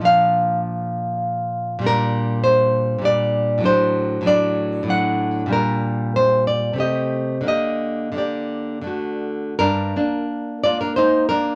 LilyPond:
\new Staff \with { instrumentName = "Nylon-string guitar" } { \time 3/4 \key bes \major \tempo 4 = 96 << { f''2~ f''8 r8 | \key g \minor bes'4 c''4 d''4 | c''4 d''4 fis''4 | bes'4 c''8 d''8 ees''4 |
ees''4 d''4. r8 | <d' bes'>4. <f' d''>16 <d' bes'>16 <ees' c''>8 <d' bes'>8 | } \\ { <bes, f d'>2. | <bes, g d'>2 <bes, g d'>4 | <a, fis d'>4 <a, fis d'>4 <a, fis d'>4 | <bes, g d'>2 <c a g'>4 |
<d bes g'>4 <d bes g'>4 <d a fis'>4 | g,8 <bes d'>4 <bes d'>4 bes8 | } >> }